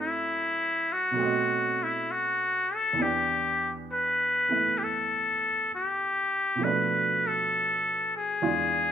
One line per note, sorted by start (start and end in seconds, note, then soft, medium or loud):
0.00 1.14 F#2 soft
0.00 1.12 F#3 soft
0.00 1.15 A3 soft
0.00 1.18 C4 soft
0.00 1.19 E4 medium
0.00 0.94 E4 medium
0.93 1.85 F#4 medium
1.11 2.96 B2 soft
1.11 2.97 F#3 soft
1.17 2.98 A3 soft
1.17 3.00 C4 soft
1.23 3.02 D#5 medium
1.83 2.13 E4 medium
2.11 2.77 F#4 medium
2.75 3.04 A4 medium
2.93 6.58 E2 soft
2.93 4.47 E3 soft
2.99 4.49 B3 soft
2.99 6.62 D4 soft
2.99 3.74 G4 medium
3.04 6.64 G4 medium
3.93 4.80 B4 medium
4.49 6.60 E3 soft
4.49 6.60 A3 soft
4.49 6.61 B3 soft
4.49 6.62 E4 soft
4.78 4.85 G4 medium
4.84 5.72 A4 medium
5.75 6.65 G4 medium
6.56 8.39 B2 soft
6.56 8.40 F3 soft
6.61 8.42 A3 soft
6.61 8.41 D4 soft
6.61 7.29 B4 medium
6.67 8.44 B4 medium
7.27 8.15 A4 medium
8.17 8.92 G#4 medium
8.42 8.92 E2 soft
8.42 8.92 E3 soft
8.42 8.92 G#3 soft
8.42 8.92 D4 soft
8.42 8.92 F4 medium